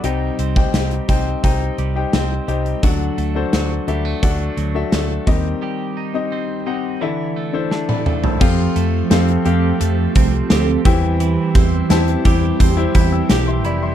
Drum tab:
CC |----------------|----------------|----------------|x---------------|
HH |x-x-xxx-x-x-x-xx|x-x-x-x-x-x-x-x-|----------------|--x-xxx-x-x-x-x-|
SD |----o-------o---|----o-------o---|------------o---|----o-------o---|
T1 |----------------|----------------|-------------o--|----------------|
T2 |----------------|----------------|--------------o-|----------------|
FT |----------------|----------------|---------------o|----------------|
BD |---o--o-o-------|o-------o-----o-|----------------|o---------o---o-|

CC |----------------|
HH |x-x-xxx-x-x-x-x-|
SD |----o-------o---|
T1 |----------------|
T2 |----------------|
FT |----------------|
BD |--o---o-o-o-----|